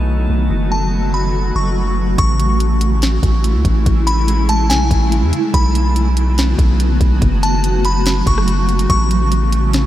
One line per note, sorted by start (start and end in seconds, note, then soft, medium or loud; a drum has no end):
0.00 0.28 B1 loud
0.00 2.15 F#3 medium
0.00 2.14 A3 medium
0.00 0.49 D#4 medium
0.00 2.15 F#4 medium
0.00 0.49 B4 medium
0.00 0.49 A5 medium
0.30 0.50 B1 loud
0.50 1.51 F#1 loud
0.50 2.17 F#4 medium
0.50 2.17 A4 medium
0.50 2.17 G#6 medium
0.72 1.11 A5 medium
1.14 1.53 B5 medium
1.55 2.16 F#1 loud
1.55 2.15 C#6 medium
2.18 3.19 A1 loud
2.18 5.51 C#3 medium
2.18 5.51 E3 medium
2.18 5.51 G#3 medium
2.18 9.86 A3 medium
2.18 5.51 E4 medium
2.18 3.40 C#6 loud
2.18 kick loud
2.18 closed hi-hat medium
2.40 closed hi-hat medium
2.60 closed hi-hat medium
2.81 closed hi-hat medium
3.02 snare loud
3.02 closed hi-hat medium
3.23 3.56 A1 loud
3.23 kick loud
3.23 closed hi-hat medium
3.44 closed hi-hat medium
3.55 3.64 C#2 loud
3.65 3.85 A1 loud
3.65 kick medium
3.65 closed hi-hat medium
3.86 4.72 A1 loud
3.86 kick loud
3.86 closed hi-hat medium
4.07 4.46 B5 medium
4.07 closed hi-hat medium
4.28 closed hi-hat medium
4.49 4.69 A5 medium
4.49 closed hi-hat medium
4.70 4.90 B1 loud
4.70 5.09 G#5 medium
4.70 snare loud
4.70 closed hi-hat medium
4.91 5.24 A1 loud
4.91 kick loud
4.91 closed hi-hat medium
5.12 closed hi-hat medium
5.22 5.32 E2 loud
5.33 closed hi-hat medium
5.54 6.55 B1 loud
5.54 8.86 F#3 medium
5.54 8.86 F#4 loud
5.54 6.76 B5 loud
5.54 kick loud
5.54 closed hi-hat medium
5.75 closed hi-hat medium
5.96 closed hi-hat medium
6.17 closed hi-hat medium
6.38 snare loud
6.38 closed hi-hat medium
6.59 6.99 B1 loud
6.59 kick loud
6.59 closed hi-hat medium
6.80 closed hi-hat medium
7.01 7.21 B1 loud
7.01 kick medium
7.01 closed hi-hat medium
7.22 8.23 F#1 loud
7.22 9.86 C#3 medium
7.22 kick loud
7.22 closed hi-hat medium
7.43 7.82 A5 medium
7.43 closed hi-hat medium
7.64 closed hi-hat medium
7.85 8.25 B5 medium
7.85 closed hi-hat medium
8.06 snare loud
8.06 closed hi-hat medium
8.26 8.87 F#1 loud
8.26 8.86 C#6 medium
8.26 kick loud
8.26 closed hi-hat medium
8.38 cross-stick medium
8.48 closed hi-hat medium
8.69 closed hi-hat soft
8.79 closed hi-hat medium
8.90 9.86 A1 loud
8.90 9.86 E3 medium
8.90 9.86 C#4 medium
8.90 9.86 E4 medium
8.90 9.86 A4 medium
8.90 9.86 G#5 medium
8.90 9.86 C#6 loud
8.90 kick loud
8.90 closed hi-hat medium
9.11 closed hi-hat medium
9.32 closed hi-hat medium
9.53 closed hi-hat medium
9.73 snare loud
9.73 closed hi-hat medium